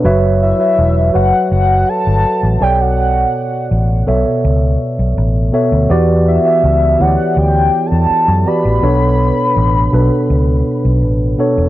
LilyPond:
<<
  \new Staff \with { instrumentName = "Soft synth lead" } { \time 4/4 \key b \minor \tempo 4 = 82 r8 e''4 fis''8 fis''8 a''4 g''16 fis''16~ | fis''4~ fis''16 r2 r8. | r8 e''4 fis''8 \tuplet 3/2 { g''4 a''8~ } a''8 b''8~ | b''2. r4 | }
  \new Staff \with { instrumentName = "Tine electric piano" } { \time 4/4 \key b \minor <fis fis' b' cis'' e''>8 r16 <fis fis' b' cis'' e''>8 r16 <fis fis' b' cis'' fis''>4. r8 <b, b a' cis'' d''>8~ | <b, b a' cis'' d''>4 r8 <b, b a' cis'' e''>4. r8 <b, b a' cis'' e''>8 | <e b fis' g' d''>8 r16 <e b fis' g' e''>8 r16 <e b e' g' cis'' d''>4. r8 <e b fis' g' d''>8 | <b, b d' a' cis''>4~ <b, b d' a' cis''>16 r16 <b, b d' a' b'>4. r8 <b, b d' a' cis''>8 | }
  \new Staff \with { instrumentName = "Fingered electric bass" } { \clef bass \time 4/4 \key b \minor fis,,8. r16 e,,8 fis,,16 r16 fis,,8 r16 g,,16 r16 a,,16 b,,8~ | b,,8 r8 a,,8 b,,16 r16 cis,8 r16 b,,16 a,,8 r16 d,16 | e,8. r16 cis,8 d,16 r16 d,8 r16 e,16 r16 fis,16 r16 a,,16 | b,,8. r16 a,,8 b,,16 r16 cis,8 r16 b,,16 a,,8 r16 e,,16 | }
>>